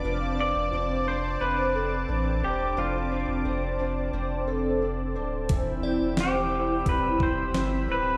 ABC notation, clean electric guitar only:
X:1
M:4/4
L:1/8
Q:1/4=88
K:Flyd
V:1 name="Clean electric guitar"
z d2 c B3 G | F2 z6 | z2 G2 B c2 B |]